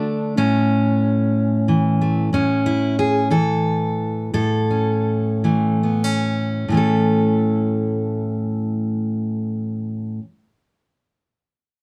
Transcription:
0, 0, Header, 1, 2, 480
1, 0, Start_track
1, 0, Key_signature, 3, "major"
1, 0, Tempo, 647948
1, 284, Time_signature, 6, 3, 24, 8
1, 2207, Tempo, 677201
1, 3167, Tempo, 723764
1, 3647, Tempo, 777202
1, 4127, Tempo, 858369
1, 4607, Tempo, 896861
1, 7356, End_track
2, 0, Start_track
2, 0, Title_t, "Steel-string acoustic guitar"
2, 0, Program_c, 0, 25
2, 0, Note_on_c, 0, 50, 80
2, 0, Note_on_c, 0, 57, 69
2, 0, Note_on_c, 0, 62, 95
2, 277, Note_on_c, 0, 45, 76
2, 278, Note_off_c, 0, 62, 0
2, 280, Note_on_c, 0, 61, 90
2, 281, Note_off_c, 0, 50, 0
2, 1246, Note_on_c, 0, 52, 60
2, 1489, Note_off_c, 0, 57, 0
2, 1492, Note_on_c, 0, 57, 47
2, 1696, Note_off_c, 0, 52, 0
2, 1699, Note_off_c, 0, 57, 0
2, 1715, Note_off_c, 0, 45, 0
2, 1722, Note_off_c, 0, 61, 0
2, 1724, Note_on_c, 0, 45, 68
2, 1732, Note_on_c, 0, 61, 85
2, 1970, Note_on_c, 0, 64, 83
2, 2210, Note_off_c, 0, 64, 0
2, 2213, Note_on_c, 0, 68, 87
2, 2438, Note_on_c, 0, 52, 59
2, 2440, Note_off_c, 0, 68, 0
2, 2443, Note_on_c, 0, 69, 88
2, 2445, Note_off_c, 0, 61, 0
2, 3160, Note_off_c, 0, 69, 0
2, 3166, Note_off_c, 0, 45, 0
2, 3168, Note_on_c, 0, 45, 64
2, 3171, Note_on_c, 0, 69, 89
2, 3413, Note_on_c, 0, 61, 42
2, 3880, Note_off_c, 0, 52, 0
2, 3883, Note_on_c, 0, 52, 53
2, 3887, Note_on_c, 0, 57, 41
2, 4123, Note_off_c, 0, 61, 0
2, 4126, Note_on_c, 0, 59, 38
2, 4241, Note_off_c, 0, 59, 0
2, 4241, Note_on_c, 0, 61, 33
2, 4577, Note_off_c, 0, 52, 0
2, 4579, Note_off_c, 0, 57, 0
2, 4595, Note_off_c, 0, 45, 0
2, 4602, Note_on_c, 0, 45, 55
2, 4606, Note_off_c, 0, 61, 0
2, 4608, Note_off_c, 0, 69, 0
2, 4612, Note_on_c, 0, 52, 50
2, 4621, Note_on_c, 0, 57, 48
2, 4633, Note_on_c, 0, 61, 50
2, 4649, Note_on_c, 0, 69, 67
2, 6359, Note_off_c, 0, 69, 0
2, 6475, Note_off_c, 0, 45, 0
2, 6486, Note_off_c, 0, 52, 0
2, 6494, Note_off_c, 0, 57, 0
2, 6506, Note_off_c, 0, 61, 0
2, 7356, End_track
0, 0, End_of_file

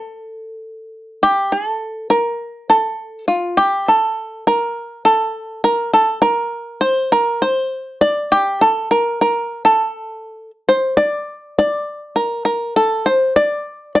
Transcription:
0, 0, Header, 1, 2, 480
1, 0, Start_track
1, 0, Tempo, 592885
1, 1223, Time_signature, 4, 2, 24, 8
1, 11334, End_track
2, 0, Start_track
2, 0, Title_t, "Five-string banjo"
2, 0, Program_c, 0, 105
2, 0, Note_on_c, 0, 69, 99
2, 995, Note_on_c, 0, 67, 94
2, 1103, Note_off_c, 0, 69, 0
2, 1232, Note_on_c, 0, 69, 77
2, 1236, Note_off_c, 0, 67, 0
2, 1697, Note_off_c, 0, 69, 0
2, 1700, Note_on_c, 0, 70, 81
2, 2179, Note_off_c, 0, 70, 0
2, 2182, Note_on_c, 0, 69, 86
2, 2629, Note_off_c, 0, 69, 0
2, 2654, Note_on_c, 0, 65, 72
2, 2892, Note_on_c, 0, 67, 83
2, 2904, Note_off_c, 0, 65, 0
2, 3143, Note_off_c, 0, 67, 0
2, 3144, Note_on_c, 0, 69, 84
2, 3616, Note_off_c, 0, 69, 0
2, 3620, Note_on_c, 0, 70, 85
2, 4085, Note_off_c, 0, 70, 0
2, 4089, Note_on_c, 0, 69, 85
2, 4563, Note_off_c, 0, 69, 0
2, 4566, Note_on_c, 0, 70, 88
2, 4801, Note_off_c, 0, 70, 0
2, 4805, Note_on_c, 0, 69, 85
2, 5030, Note_off_c, 0, 69, 0
2, 5033, Note_on_c, 0, 70, 95
2, 5512, Note_on_c, 0, 72, 95
2, 5541, Note_off_c, 0, 70, 0
2, 5748, Note_off_c, 0, 72, 0
2, 5765, Note_on_c, 0, 70, 97
2, 6006, Note_on_c, 0, 72, 85
2, 6019, Note_off_c, 0, 70, 0
2, 6483, Note_off_c, 0, 72, 0
2, 6487, Note_on_c, 0, 74, 94
2, 6715, Note_off_c, 0, 74, 0
2, 6734, Note_on_c, 0, 67, 91
2, 6973, Note_on_c, 0, 69, 85
2, 6984, Note_off_c, 0, 67, 0
2, 7199, Note_off_c, 0, 69, 0
2, 7213, Note_on_c, 0, 70, 86
2, 7449, Note_off_c, 0, 70, 0
2, 7459, Note_on_c, 0, 70, 79
2, 7808, Note_off_c, 0, 70, 0
2, 7812, Note_on_c, 0, 69, 89
2, 8504, Note_off_c, 0, 69, 0
2, 8651, Note_on_c, 0, 72, 92
2, 8878, Note_off_c, 0, 72, 0
2, 8882, Note_on_c, 0, 74, 96
2, 9370, Note_off_c, 0, 74, 0
2, 9380, Note_on_c, 0, 74, 94
2, 9843, Note_on_c, 0, 70, 78
2, 9876, Note_off_c, 0, 74, 0
2, 10070, Note_off_c, 0, 70, 0
2, 10080, Note_on_c, 0, 70, 76
2, 10329, Note_off_c, 0, 70, 0
2, 10333, Note_on_c, 0, 69, 85
2, 10572, Note_on_c, 0, 72, 97
2, 10585, Note_off_c, 0, 69, 0
2, 10814, Note_off_c, 0, 72, 0
2, 10817, Note_on_c, 0, 74, 98
2, 11268, Note_off_c, 0, 74, 0
2, 11295, Note_on_c, 0, 74, 97
2, 11334, Note_off_c, 0, 74, 0
2, 11334, End_track
0, 0, End_of_file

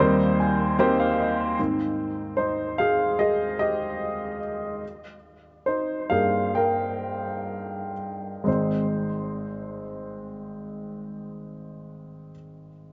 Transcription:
0, 0, Header, 1, 2, 480
1, 0, Start_track
1, 0, Key_signature, -4, "major"
1, 0, Tempo, 802139
1, 948, Time_signature, 4, 2, 24, 8
1, 2392, Tempo, 837989
1, 3352, Tempo, 886263
1, 3832, Tempo, 927357
1, 4312, Tempo, 980392
1, 4792, Tempo, 996678
1, 6940, End_track
2, 0, Start_track
2, 0, Title_t, "Upright piano"
2, 0, Program_c, 0, 0
2, 0, Note_on_c, 0, 39, 76
2, 0, Note_on_c, 0, 51, 75
2, 0, Note_on_c, 0, 55, 77
2, 0, Note_on_c, 0, 58, 85
2, 0, Note_on_c, 0, 60, 77
2, 0, Note_on_c, 0, 63, 81
2, 0, Note_on_c, 0, 70, 53
2, 0, Note_on_c, 0, 72, 92
2, 0, Note_on_c, 0, 75, 68
2, 102, Note_off_c, 0, 75, 0
2, 103, Control_c, 0, 64, 127
2, 104, Note_off_c, 0, 70, 0
2, 239, Note_on_c, 0, 80, 66
2, 447, Note_off_c, 0, 58, 0
2, 449, Note_off_c, 0, 60, 0
2, 449, Note_off_c, 0, 63, 0
2, 450, Note_off_c, 0, 72, 0
2, 451, Note_off_c, 0, 55, 0
2, 459, Note_off_c, 0, 80, 0
2, 472, Note_on_c, 0, 58, 93
2, 475, Note_on_c, 0, 60, 84
2, 477, Note_on_c, 0, 63, 75
2, 478, Note_on_c, 0, 72, 96
2, 478, Note_on_c, 0, 79, 75
2, 479, Note_on_c, 0, 67, 81
2, 587, Note_off_c, 0, 79, 0
2, 597, Note_on_c, 0, 77, 69
2, 706, Note_off_c, 0, 77, 0
2, 717, Note_on_c, 0, 75, 65
2, 925, Note_off_c, 0, 58, 0
2, 927, Note_off_c, 0, 39, 0
2, 927, Note_off_c, 0, 51, 0
2, 927, Note_off_c, 0, 60, 0
2, 928, Note_off_c, 0, 63, 0
2, 928, Note_off_c, 0, 72, 0
2, 929, Note_off_c, 0, 67, 0
2, 935, Note_off_c, 0, 75, 0
2, 952, Note_on_c, 0, 44, 46
2, 954, Note_on_c, 0, 51, 40
2, 956, Control_c, 0, 64, 0
2, 958, Note_on_c, 0, 60, 47
2, 1059, Control_c, 0, 64, 127
2, 1417, Note_on_c, 0, 72, 72
2, 1424, Note_on_c, 0, 63, 58
2, 1642, Note_off_c, 0, 44, 0
2, 1643, Note_off_c, 0, 51, 0
2, 1645, Note_off_c, 0, 60, 0
2, 1648, Note_off_c, 0, 63, 0
2, 1665, Note_on_c, 0, 77, 80
2, 1668, Note_off_c, 0, 72, 0
2, 1674, Note_on_c, 0, 68, 62
2, 1894, Note_off_c, 0, 68, 0
2, 1909, Note_on_c, 0, 75, 78
2, 1914, Note_off_c, 0, 77, 0
2, 1916, Note_on_c, 0, 68, 62
2, 2137, Note_off_c, 0, 68, 0
2, 2141, Note_off_c, 0, 75, 0
2, 2150, Note_on_c, 0, 75, 83
2, 2154, Note_on_c, 0, 67, 53
2, 2605, Note_off_c, 0, 75, 0
2, 2607, Note_off_c, 0, 67, 0
2, 2874, Control_c, 0, 64, 0
2, 2977, Control_c, 0, 64, 127
2, 3345, Note_on_c, 0, 72, 66
2, 3356, Note_on_c, 0, 63, 53
2, 3575, Note_off_c, 0, 63, 0
2, 3581, Note_on_c, 0, 77, 74
2, 3584, Note_on_c, 0, 43, 41
2, 3586, Note_on_c, 0, 67, 38
2, 3589, Note_on_c, 0, 68, 52
2, 3591, Note_on_c, 0, 58, 46
2, 3594, Note_off_c, 0, 72, 0
2, 3815, Note_off_c, 0, 68, 0
2, 3827, Note_on_c, 0, 79, 69
2, 3835, Note_off_c, 0, 77, 0
2, 3835, Note_on_c, 0, 70, 52
2, 4527, Note_off_c, 0, 79, 0
2, 4531, Note_off_c, 0, 70, 0
2, 4771, Note_off_c, 0, 43, 0
2, 4772, Note_off_c, 0, 67, 0
2, 4774, Note_off_c, 0, 58, 0
2, 4778, Note_on_c, 0, 56, 53
2, 4783, Note_on_c, 0, 60, 50
2, 4788, Note_on_c, 0, 32, 50
2, 4791, Note_on_c, 0, 63, 47
2, 4798, Note_on_c, 0, 72, 57
2, 4800, Control_c, 0, 64, 0
2, 4897, Control_c, 0, 64, 127
2, 6637, Note_off_c, 0, 56, 0
2, 6642, Note_off_c, 0, 60, 0
2, 6648, Note_off_c, 0, 32, 0
2, 6650, Note_off_c, 0, 63, 0
2, 6657, Note_off_c, 0, 72, 0
2, 6940, End_track
0, 0, End_of_file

